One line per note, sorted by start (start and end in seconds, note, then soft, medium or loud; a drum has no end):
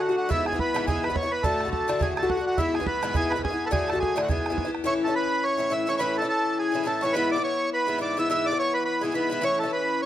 0.00 0.16 F#4 medium
0.09 0.30 D3 soft
0.09 0.30 A3 soft
0.09 0.30 F#4 soft
0.17 0.30 F#4 medium
0.29 0.52 G#2 medium
0.29 0.52 E3 medium
0.29 0.53 B3 medium
0.29 0.45 E4 medium
0.29 0.52 E4 medium
0.29 bodhran medium
0.46 0.59 G#4 medium
0.46 bodhran medium
0.53 0.73 E3 soft
0.53 0.75 B3 soft
0.53 0.75 E4 soft
0.53 bodhran soft
0.59 0.86 B4 medium
0.59 bodhran medium
0.74 0.86 G#2 medium
0.74 0.87 E3 medium
0.74 0.87 B3 medium
0.74 0.88 E4 medium
0.74 bodhran medium
0.87 1.10 G#2 medium
0.87 1.09 E3 medium
0.87 1.09 B3 medium
0.87 1.08 E4 medium
0.87 1.04 G#4 medium
0.87 bodhran medium
0.96 bodhran soft
1.04 1.16 B4 medium
1.04 bodhran medium
1.10 1.25 G#2 soft
1.10 1.24 E3 soft
1.10 1.23 B3 soft
1.10 1.22 E4 soft
1.10 bodhran soft
1.15 1.32 C#5 medium
1.15 bodhran medium
1.23 1.44 E3 soft
1.23 1.44 B3 soft
1.23 1.43 E4 medium
1.31 1.44 B4 medium
1.43 1.66 A2 medium
1.43 1.67 D3 medium
1.43 1.65 A3 medium
1.43 1.64 F#4 medium
1.43 1.70 A4 medium
1.43 bodhran medium
1.60 bodhran medium
1.65 1.87 D3 soft
1.65 1.88 A3 soft
1.65 1.88 F#4 soft
1.65 bodhran soft
1.71 2.01 A4 medium
1.71 bodhran medium
1.88 1.98 A2 medium
1.88 2.00 D3 medium
1.88 2.01 A3 medium
1.88 2.01 F#4 medium
1.88 bodhran medium
1.99 2.23 A2 medium
1.99 2.23 D3 medium
1.99 2.22 A3 medium
1.99 2.21 F#4 medium
1.99 2.14 G#4 medium
1.99 bodhran medium
2.10 bodhran soft
2.16 2.18 G#4 medium
2.16 2.30 A4 medium
2.16 bodhran medium
2.23 2.38 A2 soft
2.23 2.38 D3 soft
2.23 2.37 A3 soft
2.23 2.36 F#4 medium
2.23 bodhran soft
2.30 2.45 F#4 medium
2.30 bodhran medium
2.37 2.58 D3 soft
2.37 2.59 A3 soft
2.37 2.58 F#4 soft
2.47 2.59 F#4 medium
2.58 2.80 G#2 medium
2.58 2.81 E3 medium
2.58 2.80 B3 medium
2.58 2.75 E4 medium
2.58 2.79 E4 medium
2.58 bodhran medium
2.74 2.87 G#4 medium
2.74 bodhran medium
2.80 3.02 E3 soft
2.80 3.03 B3 soft
2.80 3.02 E4 medium
2.80 bodhran soft
2.87 3.16 B4 medium
2.87 bodhran medium
3.03 3.13 G#2 medium
3.03 3.14 E3 medium
3.03 3.15 B3 medium
3.03 3.15 E4 medium
3.03 bodhran medium
3.14 3.36 G#2 medium
3.14 3.36 E3 medium
3.14 3.35 B3 medium
3.14 3.35 E4 medium
3.14 3.32 G#4 medium
3.14 bodhran medium
3.24 bodhran soft
3.30 3.42 B4 medium
3.30 bodhran medium
3.36 3.51 G#2 soft
3.36 3.51 E3 soft
3.36 3.51 B3 soft
3.36 3.49 E4 soft
3.36 bodhran soft
3.44 3.65 G#4 medium
3.44 bodhran medium
3.50 3.71 E3 soft
3.50 3.71 B3 soft
3.50 3.71 E4 soft
3.66 3.71 A4 medium
3.66 3.68 B4 medium
3.71 3.94 A2 medium
3.71 3.94 D3 medium
3.71 3.94 A3 medium
3.71 3.92 F#4 medium
3.71 3.89 G#4 medium
3.71 bodhran medium
3.87 3.99 A4 medium
3.87 bodhran medium
3.93 4.16 D3 soft
3.93 4.16 A3 soft
3.93 4.16 F#4 soft
3.93 bodhran soft
4.00 4.21 G#4 medium
4.00 bodhran medium
4.16 4.28 A2 medium
4.16 4.29 D3 medium
4.16 4.29 A3 medium
4.16 4.29 F#4 medium
4.16 bodhran medium
4.22 4.29 F#4 medium
4.28 4.51 G#2 medium
4.28 4.51 E3 medium
4.28 4.50 B3 medium
4.28 4.49 E4 medium
4.28 4.71 G#4 medium
4.28 bodhran medium
4.38 bodhran soft
4.46 bodhran medium
4.50 4.66 G#2 soft
4.50 4.66 E3 soft
4.50 4.66 B3 soft
4.50 4.64 E4 medium
4.50 bodhran soft
4.58 bodhran medium
4.65 4.83 E3 soft
4.65 4.85 B3 soft
4.65 4.85 E4 medium
4.75 bodhran soft
4.84 5.07 A2 medium
4.84 5.08 E3 medium
4.84 5.08 C#4 medium
4.84 5.06 E4 medium
4.84 4.94 C#5 loud
5.04 5.60 E4 medium
5.04 5.14 A4 medium
5.09 5.58 E3 soft
5.09 5.58 C#4 soft
5.16 5.44 B4 medium
5.44 5.73 C#5 medium
5.57 5.69 A2 soft
5.57 5.70 E3 soft
5.57 5.71 C#4 medium
5.57 5.72 E4 medium
5.70 5.86 A2 medium
5.70 5.86 E3 medium
5.70 5.87 C#4 soft
5.70 5.88 E4 soft
5.70 5.89 E5 medium
5.87 5.98 A2 medium
5.87 5.99 E3 medium
5.87 5.99 C#4 medium
5.87 6.00 E4 medium
5.87 5.96 C#5 medium
5.97 6.22 A2 medium
5.97 6.23 E3 medium
5.97 6.22 C#4 medium
5.97 6.17 B4 medium
5.97 6.00 C#5 medium
6.01 6.21 E4 medium
6.17 6.27 A4 medium
6.22 6.73 E3 soft
6.22 6.74 C#4 soft
6.22 6.75 E4 medium
6.29 6.58 A4 medium
6.59 6.87 G#4 medium
6.72 6.82 A2 soft
6.72 6.84 E3 medium
6.72 6.85 C#4 medium
6.72 6.86 E4 medium
6.83 7.00 A2 medium
6.83 7.01 E3 medium
6.83 7.02 C#4 medium
6.83 7.03 E4 medium
6.83 7.03 A4 medium
7.01 7.14 A2 medium
7.01 7.15 E3 medium
7.01 7.15 C#4 medium
7.01 7.16 E4 medium
7.01 7.15 C#5 medium
7.13 7.37 G#2 medium
7.13 7.38 E3 medium
7.13 7.37 B3 medium
7.13 7.35 E4 medium
7.13 7.31 B4 loud
7.31 7.42 D5 medium
7.36 7.88 E3 soft
7.36 7.88 B3 soft
7.36 7.89 E4 medium
7.44 7.70 C#5 medium
7.74 7.99 B4 medium
7.87 7.97 G#2 soft
7.87 7.98 E3 medium
7.87 7.99 B3 medium
7.87 8.00 E4 soft
7.98 8.16 G#2 medium
7.98 8.16 E3 medium
7.98 8.17 B3 medium
7.98 8.17 E4 medium
7.98 8.18 D5 medium
8.17 8.28 G#2 medium
8.17 8.29 E3 medium
8.17 8.29 B3 medium
8.17 8.30 E4 medium
8.17 8.29 E5 medium
8.30 8.52 G#2 medium
8.30 8.52 E3 medium
8.30 8.52 B3 medium
8.30 8.50 E4 medium
8.30 8.46 E5 medium
8.46 8.58 D5 medium
8.51 9.02 E3 soft
8.51 9.02 B3 soft
8.51 9.04 E4 soft
8.59 8.74 C#5 loud
8.74 8.84 B4 medium
8.85 9.02 B4 medium
9.01 9.11 G#2 soft
9.01 9.13 E3 soft
9.01 9.14 B3 soft
9.01 9.14 E4 medium
9.01 9.14 G#4 medium
9.12 9.28 G#2 soft
9.12 9.30 E3 soft
9.12 9.31 B3 medium
9.12 9.31 E4 medium
9.12 9.44 B4 medium
9.30 9.41 G#2 medium
9.30 9.40 E3 medium
9.30 9.43 B3 medium
9.30 9.42 E4 medium
9.41 9.64 A2 medium
9.41 9.65 E3 medium
9.41 9.64 C#4 medium
9.41 9.62 E4 medium
9.41 9.59 C#5 medium
9.59 9.72 A4 medium
9.63 10.05 E3 soft
9.63 10.05 C#4 soft
9.63 10.05 E4 medium
9.73 10.01 B4 medium
10.02 10.05 C#5 medium